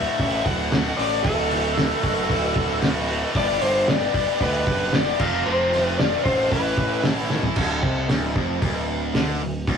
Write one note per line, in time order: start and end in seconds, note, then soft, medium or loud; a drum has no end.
0.00 0.19 D2 medium
0.00 0.19 A2 medium
0.00 0.19 D3 medium
0.00 0.20 A3 medium
0.00 0.20 F#4 medium
0.00 0.45 E5 loud
0.19 0.42 A1 loud
0.19 0.99 D2 loud
0.19 0.71 A2 medium
0.19 0.72 D3 loud
0.19 0.73 A3 loud
0.19 0.73 F#4 loud
0.19 kick medium
0.19 open hi-hat medium
0.45 0.91 D1 medium
0.45 1.00 F#5 loud
0.45 kick medium
0.45 open hi-hat medium
0.72 1.24 A2 medium
0.72 0.99 D3 medium
0.72 0.98 A3 medium
0.72 0.97 F#4 loud
0.72 snare loud
0.72 open hi-hat medium
0.97 1.21 A1 medium
0.97 1.24 D3 medium
0.97 1.25 A3 medium
0.97 1.25 F#4 medium
0.97 1.22 D5 loud
0.97 open hi-hat medium
1.23 1.92 D1 loud
1.23 1.77 D2 loud
1.23 1.76 A2 medium
1.23 1.52 D3 medium
1.23 1.51 A3 loud
1.23 1.50 F#4 loud
1.23 2.78 A4 medium
1.23 kick loud
1.23 open hi-hat medium
1.51 1.77 D3 medium
1.51 1.77 A3 medium
1.51 1.78 F#4 medium
1.51 snare soft
1.51 open hi-hat medium
1.77 2.29 A2 medium
1.77 2.04 D3 medium
1.77 2.03 A3 medium
1.77 2.02 F#4 medium
1.77 snare loud
1.77 open hi-hat medium
2.03 2.26 F#1 medium
2.03 2.30 D3 medium
2.03 2.30 A3 medium
2.03 2.31 F#4 medium
2.03 kick medium
2.03 open hi-hat medium
2.29 2.52 D1 loud
2.29 3.09 D2 medium
2.29 2.81 A2 loud
2.29 2.81 D3 loud
2.29 2.82 A3 loud
2.29 2.82 F#4 loud
2.29 kick medium
2.29 open hi-hat medium
2.55 3.24 D1 medium
2.55 kick loud
2.55 open hi-hat medium
2.82 3.34 A2 medium
2.82 3.09 D3 medium
2.82 3.08 A3 medium
2.82 3.07 F#4 medium
2.82 snare loud
2.82 open hi-hat medium
3.09 3.34 D3 medium
3.09 3.34 A3 medium
3.09 3.34 F#4 medium
3.09 open hi-hat medium
3.35 3.58 G1 loud
3.35 3.88 G2 medium
3.35 3.88 D3 loud
3.35 3.61 G3 loud
3.35 3.61 B3 loud
3.35 3.60 D4 loud
3.35 3.60 G4 medium
3.35 3.62 D5 loud
3.35 kick loud
3.35 open hi-hat loud
3.61 4.07 G1 loud
3.61 3.86 G3 medium
3.61 3.86 B3 medium
3.61 3.87 D4 medium
3.61 3.88 G4 medium
3.61 3.87 C5 medium
3.61 open hi-hat medium
3.87 4.14 G3 medium
3.87 4.13 B3 medium
3.87 4.13 D4 medium
3.87 4.12 G4 medium
3.87 4.42 D5 medium
3.87 snare loud
3.87 open hi-hat medium
4.13 4.26 G1 medium
4.13 4.40 G3 medium
4.13 4.40 B3 medium
4.13 4.41 D4 medium
4.13 4.41 G4 medium
4.13 kick loud
4.13 open hi-hat medium
4.40 4.63 D2 loud
4.40 5.18 G2 medium
4.40 5.18 D3 loud
4.40 4.91 G3 medium
4.40 4.92 B3 loud
4.40 4.93 D4 loud
4.40 4.93 G4 loud
4.40 4.94 B4 medium
4.40 kick medium
4.40 open hi-hat medium
4.67 5.12 F#1 medium
4.67 kick loud
4.67 open hi-hat medium
4.93 5.18 G3 medium
4.93 5.18 B3 medium
4.93 5.19 D4 loud
4.93 5.19 G4 medium
4.93 5.21 D5 loud
4.93 snare loud
4.93 open hi-hat medium
5.19 5.42 F1 medium
5.19 5.45 F2 medium
5.19 5.45 C3 medium
5.19 5.45 F3 medium
5.19 5.46 A3 medium
5.19 5.46 C4 medium
5.19 5.46 F4 loud
5.19 5.47 F5 loud
5.19 kick loud
5.19 crash loud
5.46 6.13 F1 loud
5.46 5.99 F2 medium
5.46 5.99 C3 medium
5.46 5.73 F3 medium
5.46 5.72 A3 loud
5.46 5.71 C4 loud
5.46 5.71 F4 loud
5.46 5.86 C5 loud
5.72 5.98 F3 medium
5.72 5.98 A3 medium
5.72 5.99 C4 medium
5.72 5.99 F4 medium
5.72 snare soft
5.72 open hi-hat medium
5.86 5.99 B4 loud
5.99 6.26 F3 medium
5.99 6.25 A3 medium
5.99 6.25 C4 medium
5.99 6.23 F4 medium
5.99 6.24 D5 medium
5.99 snare loud
5.99 open hi-hat medium
6.24 6.48 A1 loud
6.24 6.51 F3 medium
6.24 6.50 A3 medium
6.24 6.50 C4 medium
6.24 6.50 F4 medium
6.24 6.51 C5 medium
6.24 kick medium
6.24 open hi-hat medium
6.51 6.74 A1 loud
6.51 7.31 A2 medium
6.51 7.03 E3 loud
6.51 7.04 A3 loud
6.51 7.04 E4 loud
6.51 7.05 A4 loud
6.51 7.01 B4 medium
6.51 kick medium
6.51 open hi-hat medium
6.77 7.45 A1 medium
6.77 kick loud
6.77 open hi-hat medium
7.03 7.55 E3 medium
7.03 7.31 A3 medium
7.03 7.31 E4 medium
7.03 7.29 A4 medium
7.03 snare loud
7.03 open hi-hat medium
7.30 7.56 A3 medium
7.30 7.56 E4 medium
7.30 7.55 A4 medium
7.30 snare medium
7.43 floor tom medium
7.56 7.81 D1 loud
7.56 7.83 D2 loud
7.56 kick loud
7.56 crash loud
7.83 8.08 C2 medium
7.83 8.09 C3 loud
7.83 kick loud
8.09 8.34 D1 loud
8.09 8.35 D2 loud
8.09 snare loud
8.09 open hi-hat medium
8.35 8.60 F1 medium
8.35 8.61 F2 loud
8.35 kick loud
8.62 9.11 D1 loud
8.62 9.14 D2 loud
8.62 kick loud
8.62 open hi-hat medium
9.14 9.39 D2 medium
9.14 9.40 D3 loud
9.14 snare loud
9.14 open hi-hat medium
9.41 9.66 D1 medium
9.41 9.63 D2 medium
9.67 9.78 D1 medium
9.67 9.78 D2 loud
9.67 kick loud
9.67 open hi-hat medium